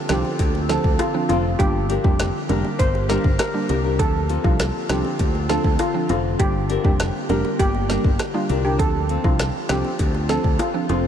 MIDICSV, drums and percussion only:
0, 0, Header, 1, 2, 480
1, 0, Start_track
1, 0, Key_signature, -2, "minor"
1, 0, Tempo, 600000
1, 1276, Time_signature, 4, 2, 24, 8
1, 8858, End_track
2, 0, Start_track
2, 0, Title_t, "Drums"
2, 72, Note_on_c, 9, 42, 40
2, 73, Note_on_c, 9, 38, 111
2, 77, Note_on_c, 9, 61, 67
2, 81, Note_on_c, 9, 37, 91
2, 152, Note_off_c, 9, 42, 0
2, 153, Note_off_c, 9, 38, 0
2, 157, Note_off_c, 9, 61, 0
2, 161, Note_off_c, 9, 37, 0
2, 198, Note_on_c, 9, 60, 60
2, 278, Note_off_c, 9, 60, 0
2, 314, Note_on_c, 9, 42, 82
2, 315, Note_on_c, 9, 36, 92
2, 394, Note_off_c, 9, 42, 0
2, 395, Note_off_c, 9, 36, 0
2, 440, Note_on_c, 9, 60, 54
2, 520, Note_off_c, 9, 60, 0
2, 556, Note_on_c, 9, 38, 67
2, 557, Note_on_c, 9, 42, 57
2, 558, Note_on_c, 9, 60, 48
2, 636, Note_off_c, 9, 38, 0
2, 637, Note_off_c, 9, 42, 0
2, 638, Note_off_c, 9, 60, 0
2, 674, Note_on_c, 9, 36, 98
2, 754, Note_off_c, 9, 36, 0
2, 794, Note_on_c, 9, 42, 82
2, 795, Note_on_c, 9, 37, 97
2, 797, Note_on_c, 9, 60, 82
2, 874, Note_off_c, 9, 42, 0
2, 875, Note_off_c, 9, 37, 0
2, 877, Note_off_c, 9, 60, 0
2, 1036, Note_on_c, 9, 42, 55
2, 1039, Note_on_c, 9, 61, 70
2, 1116, Note_off_c, 9, 42, 0
2, 1119, Note_off_c, 9, 61, 0
2, 1276, Note_on_c, 9, 36, 125
2, 1278, Note_on_c, 9, 42, 79
2, 1356, Note_off_c, 9, 36, 0
2, 1358, Note_off_c, 9, 42, 0
2, 1517, Note_on_c, 9, 42, 58
2, 1597, Note_off_c, 9, 42, 0
2, 1636, Note_on_c, 9, 36, 109
2, 1716, Note_off_c, 9, 36, 0
2, 1755, Note_on_c, 9, 42, 84
2, 1757, Note_on_c, 9, 38, 124
2, 1765, Note_on_c, 9, 37, 94
2, 1835, Note_off_c, 9, 42, 0
2, 1837, Note_off_c, 9, 38, 0
2, 1845, Note_off_c, 9, 37, 0
2, 1996, Note_on_c, 9, 42, 42
2, 1996, Note_on_c, 9, 61, 70
2, 2076, Note_off_c, 9, 42, 0
2, 2076, Note_off_c, 9, 61, 0
2, 2117, Note_on_c, 9, 60, 59
2, 2197, Note_off_c, 9, 60, 0
2, 2236, Note_on_c, 9, 36, 89
2, 2236, Note_on_c, 9, 42, 80
2, 2316, Note_off_c, 9, 36, 0
2, 2316, Note_off_c, 9, 42, 0
2, 2359, Note_on_c, 9, 60, 53
2, 2439, Note_off_c, 9, 60, 0
2, 2477, Note_on_c, 9, 38, 67
2, 2478, Note_on_c, 9, 42, 55
2, 2478, Note_on_c, 9, 60, 49
2, 2557, Note_off_c, 9, 38, 0
2, 2558, Note_off_c, 9, 42, 0
2, 2558, Note_off_c, 9, 60, 0
2, 2595, Note_on_c, 9, 36, 92
2, 2675, Note_off_c, 9, 36, 0
2, 2713, Note_on_c, 9, 42, 86
2, 2714, Note_on_c, 9, 37, 97
2, 2714, Note_on_c, 9, 38, 116
2, 2717, Note_on_c, 9, 60, 80
2, 2723, Note_off_c, 9, 37, 0
2, 2723, Note_on_c, 9, 37, 91
2, 2793, Note_off_c, 9, 42, 0
2, 2794, Note_off_c, 9, 38, 0
2, 2797, Note_off_c, 9, 60, 0
2, 2803, Note_off_c, 9, 37, 0
2, 2954, Note_on_c, 9, 42, 53
2, 2958, Note_on_c, 9, 61, 73
2, 3034, Note_off_c, 9, 42, 0
2, 3038, Note_off_c, 9, 61, 0
2, 3196, Note_on_c, 9, 36, 118
2, 3196, Note_on_c, 9, 42, 80
2, 3276, Note_off_c, 9, 36, 0
2, 3276, Note_off_c, 9, 42, 0
2, 3436, Note_on_c, 9, 42, 56
2, 3516, Note_off_c, 9, 42, 0
2, 3556, Note_on_c, 9, 36, 104
2, 3636, Note_off_c, 9, 36, 0
2, 3676, Note_on_c, 9, 42, 83
2, 3678, Note_on_c, 9, 37, 73
2, 3678, Note_on_c, 9, 38, 122
2, 3686, Note_off_c, 9, 37, 0
2, 3686, Note_on_c, 9, 37, 96
2, 3756, Note_off_c, 9, 42, 0
2, 3758, Note_off_c, 9, 38, 0
2, 3766, Note_off_c, 9, 37, 0
2, 3915, Note_on_c, 9, 42, 39
2, 3916, Note_on_c, 9, 38, 111
2, 3916, Note_on_c, 9, 61, 70
2, 3924, Note_on_c, 9, 37, 90
2, 3995, Note_off_c, 9, 42, 0
2, 3996, Note_off_c, 9, 38, 0
2, 3996, Note_off_c, 9, 61, 0
2, 4004, Note_off_c, 9, 37, 0
2, 4036, Note_on_c, 9, 60, 62
2, 4116, Note_off_c, 9, 60, 0
2, 4155, Note_on_c, 9, 42, 79
2, 4156, Note_on_c, 9, 36, 91
2, 4235, Note_off_c, 9, 42, 0
2, 4236, Note_off_c, 9, 36, 0
2, 4279, Note_on_c, 9, 60, 52
2, 4359, Note_off_c, 9, 60, 0
2, 4396, Note_on_c, 9, 38, 68
2, 4397, Note_on_c, 9, 42, 56
2, 4397, Note_on_c, 9, 60, 49
2, 4476, Note_off_c, 9, 38, 0
2, 4477, Note_off_c, 9, 42, 0
2, 4477, Note_off_c, 9, 60, 0
2, 4515, Note_on_c, 9, 36, 93
2, 4595, Note_off_c, 9, 36, 0
2, 4633, Note_on_c, 9, 42, 86
2, 4635, Note_on_c, 9, 37, 97
2, 4636, Note_on_c, 9, 60, 82
2, 4713, Note_off_c, 9, 42, 0
2, 4715, Note_off_c, 9, 37, 0
2, 4716, Note_off_c, 9, 60, 0
2, 4875, Note_on_c, 9, 42, 53
2, 4879, Note_on_c, 9, 61, 74
2, 4955, Note_off_c, 9, 42, 0
2, 4959, Note_off_c, 9, 61, 0
2, 5116, Note_on_c, 9, 36, 126
2, 5116, Note_on_c, 9, 42, 83
2, 5196, Note_off_c, 9, 36, 0
2, 5196, Note_off_c, 9, 42, 0
2, 5357, Note_on_c, 9, 42, 56
2, 5437, Note_off_c, 9, 42, 0
2, 5476, Note_on_c, 9, 36, 109
2, 5556, Note_off_c, 9, 36, 0
2, 5597, Note_on_c, 9, 42, 85
2, 5599, Note_on_c, 9, 37, 74
2, 5599, Note_on_c, 9, 38, 126
2, 5607, Note_off_c, 9, 37, 0
2, 5607, Note_on_c, 9, 37, 97
2, 5677, Note_off_c, 9, 42, 0
2, 5679, Note_off_c, 9, 38, 0
2, 5687, Note_off_c, 9, 37, 0
2, 5835, Note_on_c, 9, 42, 41
2, 5838, Note_on_c, 9, 61, 72
2, 5915, Note_off_c, 9, 42, 0
2, 5918, Note_off_c, 9, 61, 0
2, 5958, Note_on_c, 9, 60, 61
2, 6038, Note_off_c, 9, 60, 0
2, 6076, Note_on_c, 9, 36, 93
2, 6077, Note_on_c, 9, 42, 84
2, 6156, Note_off_c, 9, 36, 0
2, 6157, Note_off_c, 9, 42, 0
2, 6197, Note_on_c, 9, 60, 54
2, 6277, Note_off_c, 9, 60, 0
2, 6317, Note_on_c, 9, 38, 71
2, 6318, Note_on_c, 9, 42, 56
2, 6318, Note_on_c, 9, 60, 49
2, 6397, Note_off_c, 9, 38, 0
2, 6398, Note_off_c, 9, 42, 0
2, 6398, Note_off_c, 9, 60, 0
2, 6436, Note_on_c, 9, 36, 95
2, 6516, Note_off_c, 9, 36, 0
2, 6555, Note_on_c, 9, 42, 87
2, 6555, Note_on_c, 9, 60, 82
2, 6557, Note_on_c, 9, 37, 101
2, 6557, Note_on_c, 9, 38, 123
2, 6565, Note_off_c, 9, 37, 0
2, 6565, Note_on_c, 9, 37, 96
2, 6635, Note_off_c, 9, 42, 0
2, 6635, Note_off_c, 9, 60, 0
2, 6637, Note_off_c, 9, 38, 0
2, 6645, Note_off_c, 9, 37, 0
2, 6796, Note_on_c, 9, 42, 53
2, 6797, Note_on_c, 9, 61, 72
2, 6876, Note_off_c, 9, 42, 0
2, 6877, Note_off_c, 9, 61, 0
2, 7036, Note_on_c, 9, 36, 117
2, 7036, Note_on_c, 9, 42, 80
2, 7116, Note_off_c, 9, 36, 0
2, 7116, Note_off_c, 9, 42, 0
2, 7274, Note_on_c, 9, 42, 57
2, 7354, Note_off_c, 9, 42, 0
2, 7395, Note_on_c, 9, 36, 110
2, 7475, Note_off_c, 9, 36, 0
2, 7515, Note_on_c, 9, 42, 81
2, 7516, Note_on_c, 9, 37, 70
2, 7516, Note_on_c, 9, 38, 120
2, 7524, Note_off_c, 9, 37, 0
2, 7524, Note_on_c, 9, 37, 96
2, 7595, Note_off_c, 9, 42, 0
2, 7596, Note_off_c, 9, 38, 0
2, 7604, Note_off_c, 9, 37, 0
2, 7753, Note_on_c, 9, 42, 41
2, 7754, Note_on_c, 9, 38, 114
2, 7756, Note_on_c, 9, 61, 69
2, 7762, Note_on_c, 9, 37, 89
2, 7833, Note_off_c, 9, 42, 0
2, 7834, Note_off_c, 9, 38, 0
2, 7836, Note_off_c, 9, 61, 0
2, 7842, Note_off_c, 9, 37, 0
2, 7876, Note_on_c, 9, 60, 63
2, 7956, Note_off_c, 9, 60, 0
2, 7994, Note_on_c, 9, 42, 81
2, 7995, Note_on_c, 9, 36, 92
2, 8074, Note_off_c, 9, 42, 0
2, 8075, Note_off_c, 9, 36, 0
2, 8116, Note_on_c, 9, 60, 53
2, 8196, Note_off_c, 9, 60, 0
2, 8234, Note_on_c, 9, 38, 69
2, 8234, Note_on_c, 9, 60, 47
2, 8235, Note_on_c, 9, 42, 57
2, 8314, Note_off_c, 9, 38, 0
2, 8314, Note_off_c, 9, 60, 0
2, 8315, Note_off_c, 9, 42, 0
2, 8355, Note_on_c, 9, 36, 95
2, 8435, Note_off_c, 9, 36, 0
2, 8473, Note_on_c, 9, 60, 80
2, 8476, Note_on_c, 9, 42, 83
2, 8477, Note_on_c, 9, 37, 101
2, 8553, Note_off_c, 9, 60, 0
2, 8556, Note_off_c, 9, 42, 0
2, 8557, Note_off_c, 9, 37, 0
2, 8715, Note_on_c, 9, 42, 51
2, 8716, Note_on_c, 9, 61, 75
2, 8795, Note_off_c, 9, 42, 0
2, 8796, Note_off_c, 9, 61, 0
2, 8858, End_track
0, 0, End_of_file